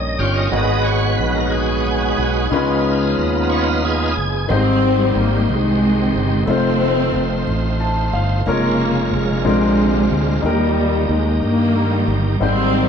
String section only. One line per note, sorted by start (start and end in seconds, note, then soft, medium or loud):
4.53 5.47 D#3 medium
4.53 5.47 G3 medium
4.53 5.14 C4 loud
5.20 5.51 A#3 medium
5.51 6.45 C3 medium
5.51 6.45 D#3 medium
5.51 6.17 G#3 loud
6.20 6.48 G#3 medium
6.52 7.45 D#3 medium
6.52 7.45 A3 medium
6.52 7.50 C4 loud
8.49 9.42 C#3 medium
8.49 9.11 A#3 loud
9.15 10.41 C3 medium
9.15 10.41 D3 medium
9.15 10.46 G#3 medium
10.46 11.39 A#2 medium
10.46 11.40 D#3 medium
10.46 11.11 G3 medium
11.11 11.43 G#3 medium
11.43 12.38 D#3 medium
11.43 12.37 G3 medium
11.43 12.17 A#3 loud
12.42 12.89 D#3 medium
12.42 12.89 G3 medium
12.42 12.89 C4 loud